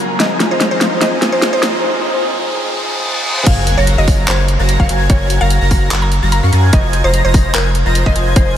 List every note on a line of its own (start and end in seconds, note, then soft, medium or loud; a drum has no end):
0.00 0.17 C#3 medium
0.00 0.17 F#3 medium
0.00 0.22 F#3 medium
0.00 0.17 A#3 medium
0.00 0.21 C#4 medium
0.00 0.21 F4 medium
0.00 1.79 F4 medium
0.00 0.17 F#4 medium
0.00 0.18 A#4 medium
0.00 0.22 A#4 loud
0.00 0.17 F5 medium
0.00 0.18 G#5 medium
0.00 0.13 A#5 medium
0.00 riser medium
0.19 1.81 D#3 medium
0.19 0.48 F3 medium
0.19 1.82 G#3 medium
0.19 0.48 C4 medium
0.19 1.81 C4 medium
0.19 0.48 D#4 medium
0.19 0.48 F4 medium
0.19 0.49 G#4 medium
0.19 0.48 C5 medium
0.19 0.48 D#5 medium
0.19 0.45 D#5 medium
0.19 0.48 G#5 medium
0.19 snare medium
0.19 closed hi-hat medium
0.40 snare medium
0.40 closed hi-hat medium
0.49 0.99 F3 medium
0.49 0.69 F3 medium
0.49 1.00 C4 medium
0.49 1.00 D#4 medium
0.49 0.69 F4 medium
0.49 0.69 C5 medium
0.49 0.68 C5 medium
0.49 0.69 D#5 medium
0.49 0.69 A#5 medium
0.53 1.01 G#4 medium
0.60 snare medium
0.60 closed hi-hat medium
0.71 0.99 F3 medium
0.71 0.99 F4 medium
0.71 0.96 C5 medium
0.71 0.99 C5 medium
0.71 0.99 D#5 medium
0.71 0.99 A#5 medium
0.81 snare medium
0.81 closed hi-hat medium
1.00 1.29 F3 medium
1.00 1.30 F3 medium
1.00 1.30 C4 medium
1.00 1.30 D#4 medium
1.00 1.30 F4 medium
1.00 1.30 G#4 medium
1.00 1.30 C5 medium
1.00 1.30 D#5 medium
1.00 1.27 D#5 medium
1.00 1.30 G#5 loud
1.00 snare medium
1.00 closed hi-hat medium
1.22 snare medium
1.22 closed hi-hat medium
1.31 1.81 F3 medium
1.31 1.50 F3 medium
1.31 1.81 C4 medium
1.31 1.82 D#4 medium
1.31 1.50 F4 medium
1.31 1.83 G#4 medium
1.31 1.49 C5 medium
1.31 1.50 C5 medium
1.31 1.51 D#5 medium
1.31 1.50 A#5 loud
1.42 snare medium
1.42 closed hi-hat medium
1.53 1.81 F3 medium
1.53 1.81 F4 medium
1.53 1.78 C5 medium
1.53 1.81 C5 medium
1.53 1.81 D#5 medium
1.53 1.81 A#5 loud
1.63 snare medium
1.63 closed hi-hat medium
1.82 2.11 F3 medium
1.82 2.12 C4 medium
1.82 2.12 D#4 medium
1.82 2.12 G#4 loud
2.12 2.21 F3 medium
2.12 2.22 C4 medium
2.12 2.23 D#4 medium
2.16 2.23 G#4 medium
2.23 2.52 F3 medium
2.23 2.52 C4 medium
2.23 2.53 D#4 medium
2.23 2.53 G#4 medium
2.53 2.62 F3 medium
2.53 2.63 C4 medium
2.53 2.64 D#4 medium
2.53 2.64 G#4 medium
2.64 2.83 F3 medium
2.64 2.83 C4 medium
2.64 2.84 D#4 medium
2.64 2.84 G#4 loud
2.64 reverse cymbal medium
2.84 3.03 F3 medium
2.84 3.04 C4 medium
2.84 3.04 D#4 medium
2.84 3.04 G#4 loud
3.05 3.24 F3 medium
3.05 3.24 C4 medium
3.05 3.25 D#4 medium
3.05 3.25 G#4 medium
3.25 3.44 F3 medium
3.25 3.45 C4 medium
3.25 3.45 D#4 medium
3.25 3.45 G#4 loud
3.46 3.75 F#1 loud
3.46 3.75 F#3 medium
3.46 3.75 F#4 medium
3.46 3.75 A#4 medium
3.46 3.75 F5 medium
3.46 3.72 F5 medium
3.46 3.75 G#5 loud
3.46 3.75 G#6 loud
3.46 kick loud
3.46 closed hi-hat medium
3.46 crash loud
3.46 sub drop medium
3.67 closed hi-hat medium
3.78 3.96 F#1 medium
3.78 3.95 F#3 loud
3.78 3.95 F#4 medium
3.78 3.95 A#4 medium
3.78 3.94 C#5 medium
3.78 3.95 F5 medium
3.78 3.95 A#5 loud
3.78 3.95 A#6 loud
3.87 closed hi-hat medium
3.98 4.26 F#1 loud
3.98 4.26 F#3 medium
3.98 4.26 F#4 medium
3.98 4.26 A#4 medium
3.98 4.23 D#5 medium
3.98 4.26 F5 medium
3.98 4.26 A#5 loud
3.98 4.26 A#6 loud
4.08 kick loud
4.08 open hi-hat loud
4.28 4.57 F#1 loud
4.28 4.42 F#3 medium
4.28 4.42 F#4 medium
4.28 4.42 A#4 medium
4.28 4.45 C5 medium
4.28 4.42 F5 medium
4.28 4.42 G#5 medium
4.28 4.42 G#6 medium
4.28 clap loud
4.28 closed hi-hat medium
4.48 closed hi-hat medium
4.59 4.77 F#1 medium
4.59 4.77 F#3 medium
4.59 4.77 F#4 medium
4.59 4.77 A#4 medium
4.59 4.77 F5 medium
4.59 4.77 A#5 loud
4.59 4.77 A#6 loud
4.69 closed hi-hat medium
4.80 4.87 F#1 loud
4.80 4.87 F#3 medium
4.80 4.87 F#4 medium
4.80 4.87 A#4 medium
4.80 4.87 F5 medium
4.80 5.04 F5 medium
4.80 4.87 C#6 loud
4.80 4.87 C#7 loud
4.80 kick medium
4.89 5.08 F#1 loud
4.89 5.07 F#3 medium
4.89 5.07 F#4 medium
4.89 5.07 A#4 medium
4.89 5.07 F5 medium
4.89 5.07 G#5 loud
4.89 5.07 G#6 medium
4.89 closed hi-hat medium
5.10 5.39 F#1 loud
5.10 5.38 F#3 loud
5.10 5.38 F#4 medium
5.10 5.35 C#5 medium
5.10 5.38 F5 medium
5.10 5.38 G#6 loud
5.10 kick loud
5.10 closed hi-hat medium
5.30 closed hi-hat medium
5.41 5.59 F#1 loud
5.41 5.59 F#3 medium
5.41 5.59 F#4 medium
5.41 5.59 A#4 medium
5.41 5.59 F5 medium
5.41 5.65 F5 loud
5.41 5.59 A#5 loud
5.41 5.59 A#6 loud
5.50 closed hi-hat medium
5.61 5.89 F#1 loud
5.61 5.89 F#3 medium
5.61 5.89 F#4 medium
5.61 5.89 A#4 medium
5.61 5.89 F5 medium
5.61 5.89 A#5 loud
5.61 5.89 A#6 loud
5.71 kick medium
5.71 open hi-hat loud
5.91 6.20 F#1 loud
5.91 6.05 F#3 medium
5.91 6.05 F#4 medium
5.91 6.05 A#4 medium
5.91 6.05 F5 medium
5.91 6.05 G#5 medium
5.91 6.05 G#6 medium
5.91 clap loud
5.91 closed hi-hat medium
6.02 6.27 A#5 loud
6.12 closed hi-hat medium
6.22 6.41 F#1 medium
6.22 6.40 F#3 medium
6.22 6.40 F#4 medium
6.22 6.40 A#4 medium
6.22 6.40 F5 medium
6.22 6.40 A#5 loud
6.22 6.40 A#6 loud
6.32 6.66 A#5 medium
6.32 closed hi-hat medium
6.43 6.51 F#2 loud
6.43 6.50 F#3 medium
6.43 6.50 F#4 medium
6.43 6.50 A#4 medium
6.43 6.50 F5 medium
6.43 6.50 C#6 medium
6.43 6.50 C#7 loud
6.53 6.71 F#2 loud
6.53 6.71 F#3 medium
6.53 6.71 F#4 medium
6.53 6.71 A#4 medium
6.53 6.71 F5 medium
6.53 6.71 G#5 medium
6.53 6.71 G#6 loud
6.53 closed hi-hat medium
6.73 7.02 F1 loud
6.73 7.02 F3 medium
6.73 7.02 F4 medium
6.73 7.02 C5 medium
6.73 6.98 D#5 loud
6.73 7.02 G#5 loud
6.73 7.02 G#6 loud
6.73 kick loud
6.73 closed hi-hat medium
6.93 closed hi-hat medium
7.04 7.22 F1 loud
7.04 7.22 F3 medium
7.04 7.22 F4 medium
7.04 7.22 C5 medium
7.04 7.21 C5 medium
7.04 7.22 D#5 medium
7.04 7.22 A#5 loud
7.04 7.22 A#6 loud
7.14 closed hi-hat medium
7.24 7.53 F1 loud
7.24 7.52 F3 medium
7.24 7.52 F4 medium
7.24 7.49 C5 medium
7.24 7.52 C5 medium
7.24 7.52 D#5 medium
7.24 7.52 A#5 loud
7.24 7.52 A#6 loud
7.34 kick loud
7.34 open hi-hat medium
7.54 7.84 F1 medium
7.54 7.68 F3 medium
7.54 7.68 F4 medium
7.54 7.71 A#4 medium
7.54 7.68 C5 medium
7.54 7.68 D#5 medium
7.54 7.68 G#5 medium
7.54 7.68 G#6 medium
7.54 clap loud
7.54 closed hi-hat medium
7.75 closed hi-hat medium
7.86 8.04 F1 medium
7.86 8.04 F3 medium
7.86 8.04 F4 medium
7.86 8.04 C5 medium
7.86 8.04 D#5 medium
7.86 8.04 A#5 loud
7.86 8.04 A#6 loud
7.95 closed hi-hat medium
8.06 8.14 F1 loud
8.06 8.13 C5 medium
8.06 8.13 D#5 medium
8.06 8.31 D#5 loud
8.06 8.13 C6 loud
8.06 8.13 C7 loud
8.06 kick medium
8.16 8.34 F1 medium
8.16 8.34 F3 medium
8.16 8.34 F4 medium
8.16 8.34 C5 medium
8.16 8.34 D#5 medium
8.16 8.34 G#5 medium
8.16 8.34 G#6 medium
8.16 closed hi-hat medium
8.36 8.57 F1 loud
8.36 8.57 F3 loud
8.36 8.57 C5 medium
8.36 8.57 G#6 loud
8.36 kick loud
8.36 closed hi-hat medium